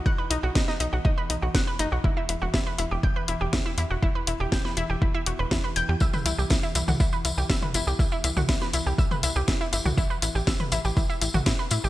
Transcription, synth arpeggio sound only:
X:1
M:4/4
L:1/16
Q:1/4=121
K:Em
V:1 name="Synth arpeggio sound"
f B ^D F D D D F D B D F f B D F | E E E F E B E G g B E G E E E F | E B E G g B E G E E F B E B g G | e B E G E E E F E B E G e B E G |
E E E F E B E G e B E G E E E F | E B E G e B E G E E E F E B E G |]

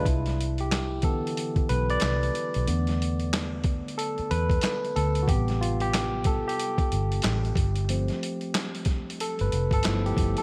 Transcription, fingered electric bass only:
X:1
M:4/4
L:1/16
Q:"Swing 16ths" 1/4=92
K:C
V:1 name="Fingered electric bass" clef=bass
C,,6- C,, z3 B,,,2 C,,2 z B,,, | E,,6- E,, z3 E,,2 z2 D,,2 | A,,,6- A,,, z3 G,,,2 A,,,2 G,,,2- | G,,,2 z6 z G,,, F,,, G,,, G,,,2 G,,, z |]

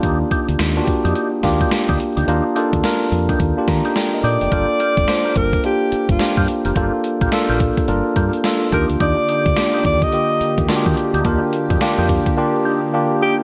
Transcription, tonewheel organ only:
X:1
M:4/4
L:1/16
Q:"Swing 16ths" 1/4=107
K:Gm
V:1 name="Tonewheel organ"
[DEG] z [DEG] z4 [DEG] [DEG] z2 [DEG] z [DEG] z [DEG] | [DEG] z [DEG] z4 [DEG] z3 [DEG] z2 [DEG] z | [B,FG] z [B,FG] z2 [B,FG] z6 z [B,FG] z [B,FG] | [B,FG] z2 [B,FG] z [B,FG] z4 [B,FG] z3 [DEG] z |
[DEG] z [DEG] z2 [DEG] z6 z [DEG] z [DEG] | [DEG] z2 [DEG] z [DEG] z4 [DEG] z3 [DEG] z |]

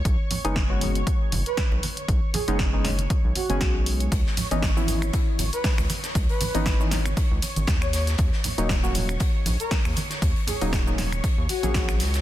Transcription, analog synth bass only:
X:1
M:4/4
L:1/16
Q:"Swing 16ths" 1/4=118
K:D#phr
V:1 name="Analog synth bass" clef=bass
B,,, z2 F,,,4- F,,, z2 F,,, z2 B,,, z2 | B,,, z2 F,,,4- F,,, z B,,, z F,,, B,,,4 | C,, z2 G,,,4- G,,, z2 G,,, z2 C,, z2 | C,, z2 G,,,4- G,,, z C,, z G,,, D,,4 |
D,, z2 D,,,4- D,,, z2 A,,, z2 D,, z2 | D,, z2 D,,,4- D,,, z D,, z A,,,3 C,,2 |]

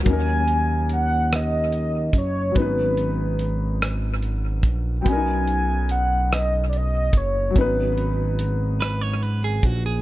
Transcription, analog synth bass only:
X:1
M:6/8
L:1/8
Q:3/8=48
K:G#m
V:1 name="Analog synth bass" clef=bass
D,,4- D,, F,,, | G,,,4- G,,, A,,, | B,,,4- B,,, F,,, | G,,,4- G,,, A,,, |]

